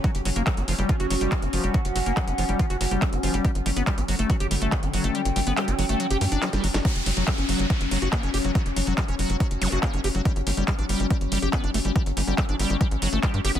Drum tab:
HH |xxoxxxoxxxoxxxox|xxoxxxoxxxoxxxox|xxoxxxoxxxoxxxox|xxoxxxoxxxoxxxox|
CP |----x-------x---|----x-------x---|----x-------x---|----x-------x---|
SD |----------------|----------------|----------------|------------oo-o|
BD |o---o---o---o---|o---o---o---o---|o---o---o---o---|----------------|

HH |xxoxxxoxxxoxxxox|xxoxxxoxxxoxxxox|xxoxxxoxxxoxxxox|xxoxxxoxxxoxxxox|
CP |----x-------x---|----x-------x---|----x-------x---|----x-------x---|
SD |----------------|----------------|----------------|----------------|
BD |o---o---o---o---|o---o---o---o---|o---o---o---o---|o---o---o---o---|